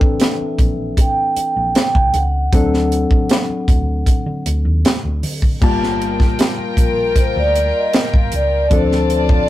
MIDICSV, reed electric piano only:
0, 0, Header, 1, 2, 480
1, 0, Start_track
1, 0, Key_signature, -2, "minor"
1, 0, Tempo, 773196
1, 1568, Time_signature, 4, 2, 24, 8
1, 5893, End_track
2, 0, Start_track
2, 0, Title_t, "Reed electric piano"
2, 0, Program_c, 0, 4
2, 0, Control_c, 0, 64, 127
2, 0, Note_on_c, 0, 52, 70
2, 0, Note_on_c, 0, 60, 63
2, 0, Note_on_c, 0, 62, 70
2, 0, Note_on_c, 0, 69, 76
2, 0, Note_on_c, 0, 71, 55
2, 0, Note_on_c, 0, 79, 61
2, 1540, Note_off_c, 0, 52, 0
2, 1541, Note_off_c, 0, 60, 0
2, 1545, Note_off_c, 0, 62, 0
2, 1547, Note_off_c, 0, 69, 0
2, 1568, Note_on_c, 0, 54, 60
2, 1572, Note_on_c, 0, 60, 59
2, 1574, Note_on_c, 0, 62, 59
2, 1577, Note_off_c, 0, 71, 0
2, 1577, Control_c, 0, 64, 0
2, 1582, Note_off_c, 0, 79, 0
2, 1582, Note_on_c, 0, 69, 70
2, 1673, Control_c, 0, 64, 127
2, 3464, Note_off_c, 0, 54, 0
2, 3465, Note_off_c, 0, 60, 0
2, 3467, Note_off_c, 0, 62, 0
2, 3471, Note_off_c, 0, 69, 0
2, 3485, Note_on_c, 0, 55, 70
2, 3491, Note_on_c, 0, 58, 62
2, 3494, Note_on_c, 0, 65, 62
2, 3495, Control_c, 0, 64, 0
2, 3498, Note_on_c, 0, 81, 82
2, 3606, Control_c, 0, 64, 127
2, 5384, Note_off_c, 0, 55, 0
2, 5386, Note_off_c, 0, 58, 0
2, 5388, Note_off_c, 0, 65, 0
2, 5390, Note_off_c, 0, 81, 0
2, 5403, Note_on_c, 0, 53, 65
2, 5406, Note_on_c, 0, 60, 59
2, 5413, Note_on_c, 0, 62, 62
2, 5417, Note_on_c, 0, 69, 74
2, 5419, Control_c, 0, 64, 0
2, 5519, Control_c, 0, 64, 127
2, 5893, Note_off_c, 0, 53, 0
2, 5893, Note_off_c, 0, 60, 0
2, 5893, Note_off_c, 0, 62, 0
2, 5893, Note_off_c, 0, 69, 0
2, 5893, End_track
0, 0, End_of_file